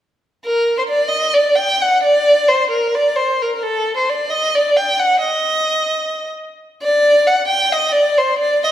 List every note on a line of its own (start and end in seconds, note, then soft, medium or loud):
0.45 0.75 A#4 medium
0.78 0.83 C5 medium
0.89 1.10 D5 medium
1.08 1.35 D#5 medium
1.34 1.57 D5 medium
1.55 1.83 G5 medium
1.82 2.03 F#5 medium
2.03 2.50 D5 medium
2.48 2.69 C5 medium
2.71 2.97 A#4 medium
2.95 3.17 D5 medium
3.16 3.43 C5 medium
3.42 3.54 A#4 medium
3.55 3.64 A#4 medium
3.63 3.96 A4 medium
3.97 4.11 C5 medium
4.09 4.31 D5 medium
4.30 4.56 D#5 medium
4.55 4.78 D5 medium
4.76 5.01 G5 medium
4.99 5.21 F#5 medium
5.21 6.29 D#5 medium
6.82 7.28 D5 medium
7.27 7.46 F#5 medium
7.48 7.74 G5 medium
7.72 7.94 D#5 medium
7.92 8.19 D5 medium
8.18 8.38 C5 medium
8.39 8.60 D5 medium
8.64 8.72 D#5 medium